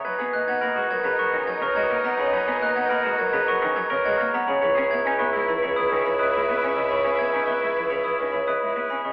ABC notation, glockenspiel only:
X:1
M:4/4
L:1/16
Q:1/4=105
K:B
V:1 name="Glockenspiel"
g' z f' g' b z g' a c' z g' c' g' z a b | g' z f' g' b z g' a c' z g' c' g' z a b | b z g' z c' z b b d' z b d' b z b c' | b z g' z c' z b b d' z b d' b z b c' |]